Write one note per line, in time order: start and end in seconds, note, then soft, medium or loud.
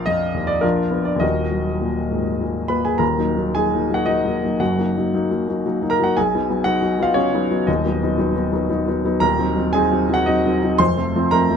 0.00 0.59 A#1 medium
0.00 0.24 F3 medium
0.00 0.61 A#4 medium
0.00 0.47 D5 medium
0.00 0.66 F5 loud
0.06 0.51 F2 medium
0.06 0.48 D#5 loud
0.34 0.63 D#2 medium
0.47 0.62 D5 loud
0.61 1.20 A#1 medium
0.61 0.90 D4 medium
0.61 1.03 F4 medium
0.61 1.06 A#4 medium
0.91 1.19 B3 medium
0.91 1.19 D4 medium
1.05 1.21 D5 medium
1.16 2.93 D#2 medium
1.16 2.70 D#5 medium
1.20 2.96 D#1 medium
1.20 2.67 F#4 medium
1.20 2.67 A#4 medium
1.52 2.00 F#3 soft
1.81 2.29 A#2 medium
2.11 2.41 G#2 soft
2.41 2.89 A#2 soft
2.68 3.00 A#3 medium
2.68 2.84 B4 medium
2.68 2.85 B5 medium
2.85 2.99 G#4 medium
2.85 3.00 G#5 medium
2.98 3.18 D#1 medium
2.98 3.18 D#2 medium
2.98 3.51 A#4 medium
2.98 3.54 A#5 medium
3.18 3.35 F#3 soft
3.18 3.35 A#3 soft
3.18 3.36 D#4 medium
3.37 3.53 F#3 soft
3.37 3.54 A#3 soft
3.37 3.54 D#4 medium
3.55 3.71 F#3 medium
3.55 3.72 A#3 soft
3.55 3.72 D#4 medium
3.55 3.92 G#4 medium
3.55 3.94 G#5 medium
3.74 3.89 F#3 soft
3.74 3.89 A#3 soft
3.74 3.90 D#4 medium
3.90 4.05 F#3 soft
3.90 4.05 A#3 soft
3.90 4.05 D#4 medium
3.90 4.07 F#5 medium
3.95 4.07 F#4 medium
4.06 4.23 F#3 soft
4.06 4.23 A#3 soft
4.06 4.24 D#4 medium
4.06 4.59 D#5 medium
4.25 4.41 F#3 soft
4.25 4.41 A#3 medium
4.25 4.41 D#4 medium
4.43 4.59 F#3 soft
4.43 4.59 A#3 soft
4.43 4.59 D#4 soft
4.60 4.77 F#1 medium
4.60 4.78 F#2 medium
4.60 5.61 F#4 medium
4.60 5.65 F#5 medium
4.78 4.94 F#3 soft
4.78 4.94 A#3 soft
4.78 4.95 D#4 soft
4.97 5.12 F#3 soft
4.97 5.12 A#3 soft
4.97 5.12 D#4 medium
5.14 5.29 F#3 medium
5.14 5.29 A#3 medium
5.14 5.30 D#4 medium
5.31 5.47 F#3 soft
5.31 5.47 A#3 soft
5.31 5.47 D#4 soft
5.48 5.64 F#3 soft
5.48 5.64 A#3 soft
5.48 5.64 D#4 medium
5.66 5.81 F#3 soft
5.66 5.81 A#3 soft
5.66 5.81 D#4 medium
5.83 5.98 F#3 medium
5.83 5.98 A#3 medium
5.83 5.98 D#4 medium
5.90 6.03 A#4 medium
5.90 6.03 A#5 loud
5.99 6.15 F#3 medium
5.99 6.15 A#3 medium
5.99 6.15 D#4 medium
6.04 6.16 F#4 medium
6.04 6.16 F#5 medium
6.17 6.34 B1 medium
6.17 6.63 G#4 medium
6.17 6.66 G#5 medium
6.34 6.49 F#3 soft
6.34 6.49 B3 soft
6.34 6.49 D#4 medium
6.50 6.64 F#3 soft
6.50 6.64 B3 medium
6.50 6.64 D#4 medium
6.64 6.81 F#3 medium
6.64 6.81 B3 medium
6.64 6.81 D#4 medium
6.64 7.00 F#4 medium
6.64 7.03 F#5 loud
6.82 6.97 F#3 soft
6.82 6.98 B3 medium
6.82 6.98 D#4 medium
6.99 7.14 F#3 soft
6.99 7.14 B3 medium
6.99 7.15 D#4 medium
6.99 7.16 F5 loud
7.04 7.16 F4 medium
7.14 7.31 F#3 medium
7.14 7.32 B3 medium
7.14 7.64 C#4 medium
7.14 7.32 D#4 medium
7.14 7.67 C#5 medium
7.34 7.49 F#3 medium
7.34 7.50 B3 medium
7.34 7.50 D#4 medium
7.51 7.66 F#3 medium
7.51 7.66 B3 soft
7.51 7.67 D#4 medium
7.67 7.84 D#1 medium
7.67 7.84 D#2 medium
7.67 7.85 D#4 medium
7.67 8.70 D#5 medium
7.86 8.00 F#3 medium
7.86 8.01 B3 soft
7.86 8.01 D#4 medium
8.02 8.17 F#3 medium
8.02 8.17 B3 medium
8.02 8.17 D#4 medium
8.18 8.34 F#3 medium
8.18 8.34 B3 medium
8.18 8.34 D#4 medium
8.36 8.51 F#3 medium
8.36 8.51 B3 medium
8.36 8.51 D#4 medium
8.52 8.68 F#3 medium
8.52 8.68 B3 medium
8.52 8.68 D#4 medium
8.69 8.85 F#3 medium
8.69 8.86 B3 medium
8.69 8.86 D#4 medium
8.87 9.03 F#3 medium
8.87 9.03 B3 medium
8.87 9.03 D#4 medium
9.05 9.20 F#3 medium
9.05 9.21 B3 medium
9.05 9.20 D#4 medium
9.20 9.38 D#1 medium
9.20 9.38 D#2 medium
9.20 9.70 A#4 medium
9.20 9.73 A#5 loud
9.39 9.55 F#3 medium
9.39 9.55 C4 medium
9.39 9.55 D#4 medium
9.57 9.72 F#3 medium
9.57 9.72 C4 medium
9.57 9.72 D#4 medium
9.73 9.90 F#3 medium
9.73 9.90 C4 medium
9.73 9.90 D#4 medium
9.73 10.11 G#4 medium
9.73 10.13 G#5 loud
9.91 10.07 F#3 medium
9.91 10.07 C4 medium
9.91 10.08 D#4 medium
10.09 10.25 F#3 medium
10.09 10.25 C4 medium
10.09 10.25 D#4 medium
10.14 10.27 F#4 medium
10.14 10.27 F#5 loud
10.26 10.43 F#3 medium
10.26 10.44 C4 medium
10.26 10.44 D#4 medium
10.26 10.80 D#5 medium
10.46 10.61 F#3 medium
10.46 10.61 C4 medium
10.46 10.61 D#4 medium
10.63 10.79 F#3 medium
10.63 10.79 C4 medium
10.63 10.79 D#4 medium
10.78 10.96 F1 medium
10.78 10.97 F2 medium
10.78 11.29 C5 medium
10.78 11.32 C6 loud
10.97 11.13 F3 soft
10.97 11.13 A3 medium
10.97 11.13 C4 medium
11.15 11.31 F3 medium
11.15 11.31 A3 medium
11.15 11.31 C4 medium
11.31 11.49 F3 medium
11.31 11.49 A3 medium
11.31 11.49 C4 medium
11.31 11.57 A#4 medium
11.31 11.57 A#5 loud
11.50 11.57 F3 soft
11.50 11.57 A3 medium
11.50 11.57 C4 medium